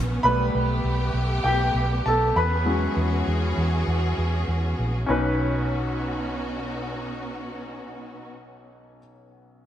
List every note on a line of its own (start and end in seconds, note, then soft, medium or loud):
0.00 0.19 A#1 medium
0.00 0.25 B3 soft
0.00 5.07 B3 medium
0.00 0.22 C#4 medium
0.00 0.25 B4 medium
0.23 0.49 B1 medium
0.23 0.66 G3 medium
0.23 2.34 A3 medium
0.23 0.66 A3 soft
0.23 0.66 B3 medium
0.23 2.34 G4 medium
0.23 1.42 B4 medium
0.23 1.41 B5 medium
0.55 0.80 B1 medium
0.84 1.09 B1 medium
1.14 1.39 B1 medium
1.44 1.70 B1 medium
1.44 2.02 G4 medium
1.44 2.01 G5 medium
1.74 2.00 B1 medium
2.06 2.31 B1 medium
2.06 2.35 A4 medium
2.06 2.37 A5 medium
2.36 2.86 E2 medium
2.36 5.07 E3 medium
2.36 5.07 C#4 medium
2.36 5.07 F#4 medium
2.36 5.07 G#4 medium
2.36 4.46 B4 medium
2.36 4.45 B5 medium
2.66 3.53 F#3 soft
2.66 3.54 G#3 soft
2.66 3.54 C#4 medium
2.97 3.22 E2 medium
3.27 3.52 E2 medium
3.57 3.83 E2 medium
3.87 4.13 E2 medium
4.18 4.43 E2 medium
4.48 4.73 E2 medium
4.79 5.04 A#1 medium
5.06 8.98 B1 medium
5.06 8.99 B1 medium
5.06 8.97 C#4 medium
5.06 8.98 D#4 medium
5.06 8.29 F#4 medium
5.06 8.99 B4 medium
5.11 8.29 B2 medium
5.11 8.29 B3 medium
5.11 8.29 C#4 medium
5.11 8.30 D#4 medium